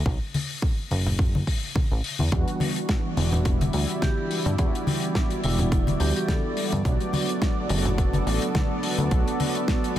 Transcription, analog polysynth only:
0, 0, Header, 1, 2, 480
1, 0, Start_track
1, 0, Key_signature, 1, "minor"
1, 0, Tempo, 566038
1, 50, Time_signature, 4, 2, 24, 8
1, 8471, End_track
2, 0, Start_track
2, 0, Title_t, "Analog polysynth"
2, 0, Program_c, 0, 90
2, 1962, Note_on_c, 0, 52, 96
2, 1966, Note_on_c, 0, 55, 87
2, 1970, Note_on_c, 0, 59, 86
2, 1975, Note_on_c, 0, 62, 86
2, 1979, Note_on_c, 0, 66, 107
2, 2660, Note_off_c, 0, 52, 0
2, 2662, Note_off_c, 0, 55, 0
2, 2664, Note_off_c, 0, 59, 0
2, 2667, Note_off_c, 0, 62, 0
2, 2669, Note_off_c, 0, 66, 0
2, 2681, Note_on_c, 0, 52, 88
2, 2686, Note_on_c, 0, 55, 81
2, 2690, Note_on_c, 0, 59, 80
2, 2693, Note_on_c, 0, 62, 79
2, 2698, Note_on_c, 0, 66, 96
2, 3860, Note_off_c, 0, 52, 0
2, 3862, Note_off_c, 0, 55, 0
2, 3864, Note_off_c, 0, 59, 0
2, 3866, Note_off_c, 0, 62, 0
2, 3868, Note_off_c, 0, 66, 0
2, 3881, Note_on_c, 0, 52, 99
2, 3886, Note_on_c, 0, 55, 87
2, 3890, Note_on_c, 0, 59, 90
2, 3893, Note_on_c, 0, 62, 90
2, 3898, Note_on_c, 0, 66, 107
2, 4580, Note_off_c, 0, 52, 0
2, 4582, Note_off_c, 0, 55, 0
2, 4584, Note_off_c, 0, 59, 0
2, 4586, Note_off_c, 0, 62, 0
2, 4588, Note_off_c, 0, 66, 0
2, 4603, Note_on_c, 0, 52, 89
2, 4606, Note_on_c, 0, 55, 82
2, 4611, Note_on_c, 0, 59, 81
2, 4615, Note_on_c, 0, 62, 84
2, 4619, Note_on_c, 0, 66, 101
2, 5780, Note_off_c, 0, 52, 0
2, 5782, Note_off_c, 0, 55, 0
2, 5784, Note_off_c, 0, 59, 0
2, 5787, Note_off_c, 0, 62, 0
2, 5789, Note_off_c, 0, 66, 0
2, 5802, Note_on_c, 0, 54, 99
2, 5807, Note_on_c, 0, 57, 87
2, 5810, Note_on_c, 0, 59, 90
2, 5815, Note_on_c, 0, 62, 88
2, 5819, Note_on_c, 0, 66, 108
2, 6500, Note_off_c, 0, 54, 0
2, 6502, Note_off_c, 0, 57, 0
2, 6504, Note_off_c, 0, 59, 0
2, 6507, Note_off_c, 0, 62, 0
2, 6509, Note_off_c, 0, 66, 0
2, 6524, Note_on_c, 0, 54, 90
2, 6528, Note_on_c, 0, 57, 83
2, 6532, Note_on_c, 0, 59, 82
2, 6536, Note_on_c, 0, 62, 83
2, 6541, Note_on_c, 0, 66, 98
2, 7701, Note_off_c, 0, 54, 0
2, 7703, Note_off_c, 0, 57, 0
2, 7705, Note_off_c, 0, 59, 0
2, 7707, Note_off_c, 0, 62, 0
2, 7710, Note_off_c, 0, 66, 0
2, 7721, Note_on_c, 0, 54, 96
2, 7725, Note_on_c, 0, 57, 92
2, 7730, Note_on_c, 0, 59, 92
2, 7734, Note_on_c, 0, 62, 89
2, 7739, Note_on_c, 0, 66, 107
2, 8419, Note_off_c, 0, 54, 0
2, 8422, Note_off_c, 0, 57, 0
2, 8424, Note_off_c, 0, 59, 0
2, 8426, Note_off_c, 0, 62, 0
2, 8429, Note_off_c, 0, 66, 0
2, 8443, Note_on_c, 0, 54, 91
2, 8471, Note_off_c, 0, 54, 0
2, 8471, End_track
0, 0, End_of_file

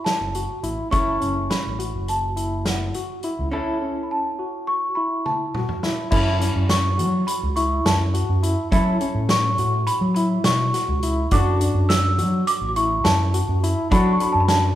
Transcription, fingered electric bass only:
0, 0, Header, 1, 2, 480
1, 0, Start_track
1, 0, Key_signature, 3, "minor"
1, 0, Tempo, 577478
1, 765, Time_signature, 9, 3, 24, 8
1, 12261, End_track
2, 0, Start_track
2, 0, Title_t, "Fingered electric bass"
2, 0, Program_c, 0, 33
2, 171, Note_on_c, 0, 30, 82
2, 365, Note_off_c, 0, 30, 0
2, 525, Note_on_c, 0, 33, 88
2, 624, Note_off_c, 0, 33, 0
2, 773, Note_on_c, 0, 30, 89
2, 966, Note_off_c, 0, 30, 0
2, 1015, Note_on_c, 0, 30, 79
2, 1208, Note_off_c, 0, 30, 0
2, 1387, Note_on_c, 0, 33, 74
2, 1575, Note_off_c, 0, 33, 0
2, 1625, Note_on_c, 0, 30, 71
2, 2404, Note_off_c, 0, 30, 0
2, 2818, Note_on_c, 0, 37, 74
2, 2911, Note_off_c, 0, 37, 0
2, 5089, Note_on_c, 0, 42, 92
2, 5384, Note_off_c, 0, 42, 0
2, 5451, Note_on_c, 0, 42, 79
2, 5811, Note_on_c, 0, 54, 84
2, 5824, Note_off_c, 0, 42, 0
2, 6007, Note_off_c, 0, 54, 0
2, 6175, Note_on_c, 0, 37, 70
2, 6467, Note_off_c, 0, 37, 0
2, 6528, Note_on_c, 0, 42, 88
2, 6824, Note_off_c, 0, 42, 0
2, 6892, Note_on_c, 0, 42, 73
2, 7087, Note_off_c, 0, 42, 0
2, 7249, Note_on_c, 0, 54, 83
2, 7445, Note_off_c, 0, 54, 0
2, 7602, Note_on_c, 0, 45, 73
2, 7900, Note_off_c, 0, 45, 0
2, 7964, Note_on_c, 0, 45, 81
2, 8163, Note_off_c, 0, 45, 0
2, 8321, Note_on_c, 0, 54, 66
2, 8619, Note_off_c, 0, 54, 0
2, 8685, Note_on_c, 0, 47, 94
2, 8883, Note_off_c, 0, 47, 0
2, 9046, Note_on_c, 0, 37, 93
2, 9342, Note_off_c, 0, 37, 0
2, 9407, Note_on_c, 0, 42, 91
2, 9702, Note_off_c, 0, 42, 0
2, 9761, Note_on_c, 0, 42, 88
2, 10128, Note_on_c, 0, 54, 81
2, 10140, Note_off_c, 0, 42, 0
2, 10324, Note_off_c, 0, 54, 0
2, 10483, Note_on_c, 0, 33, 76
2, 10780, Note_off_c, 0, 33, 0
2, 10846, Note_on_c, 0, 42, 83
2, 11141, Note_off_c, 0, 42, 0
2, 11206, Note_on_c, 0, 42, 77
2, 11403, Note_off_c, 0, 42, 0
2, 11567, Note_on_c, 0, 54, 80
2, 11763, Note_off_c, 0, 54, 0
2, 11923, Note_on_c, 0, 42, 72
2, 12218, Note_off_c, 0, 42, 0
2, 12261, End_track
0, 0, End_of_file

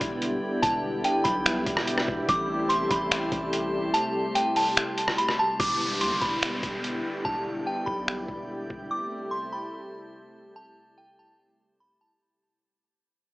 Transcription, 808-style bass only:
0, 0, Header, 1, 2, 480
1, 0, Start_track
1, 0, Key_signature, 0, "minor"
1, 0, Tempo, 413793
1, 732, Time_signature, 4, 2, 24, 8
1, 15464, End_track
2, 0, Start_track
2, 0, Title_t, "808-style bass"
2, 0, Program_c, 0, 38
2, 10, Note_on_c, 0, 28, 101
2, 472, Note_off_c, 0, 28, 0
2, 730, Note_on_c, 0, 28, 112
2, 1192, Note_off_c, 0, 28, 0
2, 1451, Note_on_c, 0, 35, 100
2, 1912, Note_off_c, 0, 35, 0
2, 1931, Note_on_c, 0, 28, 103
2, 2392, Note_off_c, 0, 28, 0
2, 2414, Note_on_c, 0, 28, 104
2, 2643, Note_off_c, 0, 28, 0
2, 2652, Note_on_c, 0, 33, 118
2, 3343, Note_off_c, 0, 33, 0
2, 3372, Note_on_c, 0, 33, 102
2, 3833, Note_off_c, 0, 33, 0
2, 3851, Note_on_c, 0, 33, 105
2, 4542, Note_off_c, 0, 33, 0
2, 6492, Note_on_c, 0, 28, 114
2, 6971, Note_on_c, 0, 40, 102
2, 6988, Note_off_c, 0, 28, 0
2, 7091, Note_on_c, 0, 28, 98
2, 7108, Note_off_c, 0, 40, 0
2, 7205, Note_off_c, 0, 28, 0
2, 7212, Note_on_c, 0, 28, 98
2, 7673, Note_off_c, 0, 28, 0
2, 7692, Note_on_c, 0, 28, 101
2, 8152, Note_off_c, 0, 28, 0
2, 8411, Note_on_c, 0, 28, 108
2, 8872, Note_off_c, 0, 28, 0
2, 9131, Note_on_c, 0, 35, 101
2, 9592, Note_off_c, 0, 35, 0
2, 9611, Note_on_c, 0, 28, 102
2, 10072, Note_off_c, 0, 28, 0
2, 10093, Note_on_c, 0, 28, 103
2, 10323, Note_off_c, 0, 28, 0
2, 15464, End_track
0, 0, End_of_file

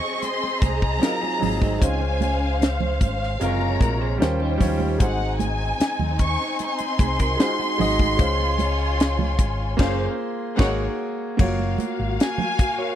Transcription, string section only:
0, 0, Header, 1, 2, 480
1, 0, Start_track
1, 0, Tempo, 797872
1, 1093, Time_signature, 4, 2, 24, 8
1, 7792, End_track
2, 0, Start_track
2, 0, Title_t, "String section"
2, 0, Program_c, 0, 48
2, 0, Note_on_c, 0, 60, 77
2, 0, Note_on_c, 0, 68, 74
2, 0, Note_on_c, 0, 75, 79
2, 1068, Note_off_c, 0, 60, 0
2, 1068, Note_off_c, 0, 75, 0
2, 1070, Note_off_c, 0, 68, 0
2, 1083, Note_on_c, 0, 77, 84
2, 1084, Note_on_c, 0, 61, 74
2, 1084, Note_on_c, 0, 72, 76
2, 2028, Note_off_c, 0, 77, 0
2, 2029, Note_off_c, 0, 61, 0
2, 2029, Note_off_c, 0, 72, 0
2, 2056, Note_on_c, 0, 82, 80
2, 2058, Note_on_c, 0, 65, 76
2, 2060, Note_on_c, 0, 73, 67
2, 2525, Note_off_c, 0, 82, 0
2, 2526, Note_off_c, 0, 65, 0
2, 2527, Note_off_c, 0, 73, 0
2, 2528, Note_on_c, 0, 79, 73
2, 2529, Note_on_c, 0, 61, 72
2, 2530, Note_on_c, 0, 72, 71
2, 3001, Note_off_c, 0, 61, 0
2, 3001, Note_off_c, 0, 72, 0
2, 3001, Note_off_c, 0, 79, 0
2, 3005, Note_on_c, 0, 60, 76
2, 3006, Note_on_c, 0, 80, 85
2, 3010, Note_on_c, 0, 63, 74
2, 4904, Note_off_c, 0, 60, 0
2, 4905, Note_off_c, 0, 80, 0
2, 4907, Note_off_c, 0, 63, 0
2, 4925, Note_on_c, 0, 65, 81
2, 4927, Note_on_c, 0, 73, 76
2, 4927, Note_on_c, 0, 80, 85
2, 5870, Note_off_c, 0, 65, 0
2, 5870, Note_off_c, 0, 80, 0
2, 5871, Note_off_c, 0, 73, 0
2, 5889, Note_on_c, 0, 61, 93
2, 5889, Note_on_c, 0, 77, 92
2, 5892, Note_on_c, 0, 72, 101
2, 6053, Note_off_c, 0, 77, 0
2, 6054, Note_off_c, 0, 61, 0
2, 6055, Note_off_c, 0, 72, 0
2, 6364, Note_on_c, 0, 63, 96
2, 6364, Note_on_c, 0, 78, 98
2, 6366, Note_on_c, 0, 73, 93
2, 6531, Note_off_c, 0, 63, 0
2, 6531, Note_off_c, 0, 78, 0
2, 6532, Note_off_c, 0, 73, 0
2, 6845, Note_on_c, 0, 77, 88
2, 6848, Note_on_c, 0, 66, 80
2, 7792, Note_off_c, 0, 66, 0
2, 7792, Note_off_c, 0, 77, 0
2, 7792, End_track
0, 0, End_of_file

